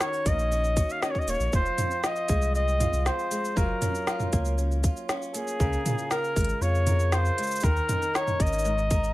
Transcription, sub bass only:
0.25 0.82 A#1 medium
1.27 1.35 D#1 medium
1.39 1.48 A#1 medium
1.53 1.70 F1 loud
2.29 2.86 C2 medium
2.92 3.09 C2 loud
3.57 3.73 F#1 loud
4.33 4.89 C#2 medium
5.60 5.76 C#2 medium
6.36 6.53 G#1 medium
6.61 7.30 F2 medium
7.63 7.80 D#2 loud
8.40 8.90 G#1 medium
8.91 9.13 G#1 medium

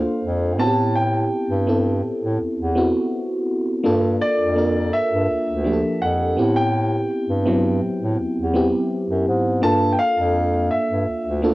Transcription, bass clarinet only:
0.23 0.61 F2 medium
0.60 1.28 A2 medium
1.50 2.00 G2 medium
2.04 2.11 A2 soft
2.23 2.39 A2 medium
2.41 2.48 E2 soft
2.58 2.91 E2 medium
3.85 4.17 G2 loud
4.39 4.89 F2 medium
4.94 5.01 G2 soft
5.12 5.28 G2 medium
5.30 5.37 D2 soft
5.48 5.80 D2 medium
6.02 6.34 F2 medium
6.38 7.06 A2 medium
7.28 7.78 G2 medium
7.83 7.90 A2 soft
8.01 8.17 A2 medium
8.19 8.26 E2 soft
8.37 8.69 E2 medium
9.09 9.25 F#2 medium
9.28 9.60 G#2 medium
9.63 9.96 G2 loud
10.18 10.68 F2 medium
10.72 10.79 G2 soft
10.90 11.06 G2 medium
11.08 11.15 D2 soft
11.26 11.54 D2 medium

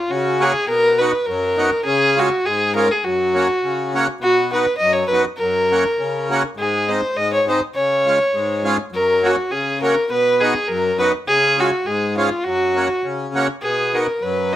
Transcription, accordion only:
0.10 0.54 C#3 medium
0.40 0.52 A#3 medium
0.40 0.53 C#4 soft
0.40 0.53 F#4 medium
0.68 1.12 B2 soft
1.00 1.12 B3 medium
1.00 1.12 D#4 medium
1.00 1.12 F#4 medium
1.28 1.72 F#2 medium
1.57 1.70 B3 medium
1.57 1.70 D#4 medium
1.57 1.70 F#4 medium
1.86 2.30 C#3 medium
2.16 2.29 G#3 medium
2.16 2.29 C#4 soft
2.16 2.29 F4 medium
2.45 2.89 G#2 medium
2.75 2.88 G#3 medium
2.75 2.88 C#4 soft
2.75 2.88 F4 medium
3.05 3.49 F#2 medium
3.34 3.47 A#3 medium
3.34 3.48 C#4 soft
3.34 3.48 F#4 medium
3.63 4.08 C#3 medium
3.94 4.07 A#3 medium
3.94 4.07 C#4 medium
3.94 4.07 F#4 medium
4.20 4.66 B2 medium
4.53 4.66 B3 medium
4.53 4.66 D#4 medium
4.53 4.66 F#4 medium
4.81 5.26 F#2 medium
5.12 5.25 B3 medium
5.12 5.25 D#4 soft
5.12 5.25 F#4 medium
5.40 5.85 F#2 medium
5.72 5.84 A#3 medium
5.72 5.84 C#4 soft
5.72 5.84 F#4 medium
5.99 6.43 C#3 medium
6.30 6.43 A#3 medium
6.30 6.43 C#4 medium
6.30 6.43 F#4 medium
6.57 7.02 G#2 medium
6.88 7.01 G#3 soft
6.88 7.01 C4 medium
6.88 7.01 D#4 medium
7.16 7.60 G#2 medium
7.48 7.60 G#3 soft
7.48 7.60 C4 soft
7.48 7.60 D#4 medium
7.75 8.19 C#3 medium
8.06 8.18 G#3 soft
8.06 8.19 C#4 medium
8.06 8.19 F4 medium
8.34 8.78 G#2 medium
8.64 8.77 G#3 medium
8.64 8.77 C#4 medium
8.64 8.77 F4 medium
8.92 9.37 F#2 medium
9.23 9.36 A#3 medium
9.23 9.36 C#4 soft
9.23 9.36 F#4 medium
9.52 9.96 C#3 soft
9.82 9.95 A#3 soft
9.82 9.95 C#4 medium
9.82 9.95 F#4 medium
10.10 10.54 B2 medium
10.42 10.54 B3 medium
10.42 10.54 D#4 medium
10.42 10.54 F#4 medium
10.70 11.13 F#2 medium
11.00 11.12 B3 medium
11.00 11.12 D#4 soft
11.00 11.12 F#4 medium
11.28 11.71 C#3 medium
11.57 11.70 G#3 medium
11.57 11.70 C#4 soft
11.57 11.71 F4 medium
11.86 12.30 G#2 medium
12.17 12.29 G#3 medium
12.17 12.29 C#4 soft
12.17 12.30 F4 medium
12.45 12.89 F#2 soft
12.75 12.88 A#3 medium
12.75 12.88 C#4 soft
12.75 12.88 F#4 medium
13.04 13.48 C#3 medium
13.35 13.48 A#3 medium
13.35 13.47 C#4 medium
13.35 13.48 F#4 medium
13.63 14.08 B2 medium
13.94 14.07 B3 medium
13.94 14.07 D#4 medium
13.94 14.07 F#4 medium
14.22 14.56 F#2 medium

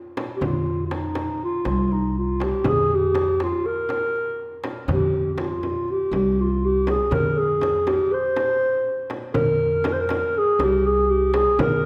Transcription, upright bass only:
0.41 1.27 F2 medium
1.65 2.51 C2 medium
2.65 3.51 F2 medium
4.88 5.74 F2 medium
6.11 6.98 C2 medium
7.11 7.97 F2 medium
9.35 10.21 F2 medium
10.59 11.45 C2 medium
11.59 11.86 F2 medium

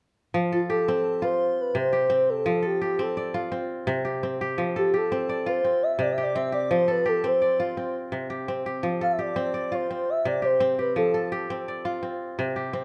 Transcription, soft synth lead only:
0.53 0.61 F4 medium
0.69 1.25 A4 medium
1.24 1.62 C5 loud
1.61 1.79 B4 loud
1.77 2.31 C5 loud
2.30 2.64 A4 loud
2.67 2.82 G4 medium
2.83 3.03 G4 medium
3.01 3.40 A4 medium
4.78 4.98 G4 medium
4.96 5.50 A4 loud
5.49 5.84 C5 loud
5.83 6.03 E5 loud
6.02 6.13 D5 medium
6.12 6.24 E5 medium
6.23 6.36 D5 loud
6.35 6.53 E5 medium
6.54 6.70 D5 medium
6.71 6.93 C5 loud
6.91 7.10 B4 medium
7.08 7.28 A4 medium
7.26 7.96 C5 medium
9.02 9.14 F5 loud
9.12 9.22 E5 medium
9.20 9.76 D5 loud
9.75 10.11 C5 medium
10.10 10.26 E5 medium
10.28 10.46 D5 medium
10.45 10.82 C5 medium
10.81 10.97 B4 medium
10.98 11.34 A4 medium

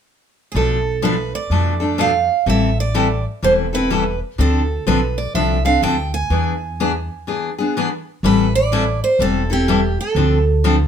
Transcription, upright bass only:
0.54 1.32 B1 medium
1.50 2.27 F2 medium
2.46 3.24 A1 medium
3.43 4.20 E1 medium
4.39 4.77 D2 medium
4.87 5.28 B1 medium
5.34 5.76 C2 medium
5.82 6.24 D2 medium
6.30 7.08 E2 medium
8.23 9.00 A1 medium
9.19 9.96 E1 medium
10.15 10.88 D2 medium

